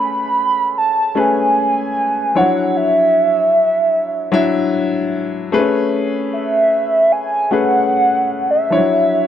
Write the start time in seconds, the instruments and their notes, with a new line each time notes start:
Already playing: grand piano A3 C#4 G#4 B4
0.00 analog synth lead B5
0.78 analog synth lead A5
1.15 grand piano A3 C#4 G#4 B4
1.19 analog synth lead G#5
2.35 grand piano F3 D4 E4 C#5, analog synth lead F#5
2.41 grand piano F#3
2.77 analog synth lead E5
4.32 grand piano F#3 D4 E4 E5
5.52 grand piano A3 C4 G#4 B4
5.59 grand piano C#4
6.33 analog synth lead E5
7.12 analog synth lead G#5
7.51 grand piano A3 C#4 G#4 B4, analog synth lead F#5
8.51 analog synth lead E5
8.70 grand piano F3 D4 E4 C#5
8.77 grand piano F#3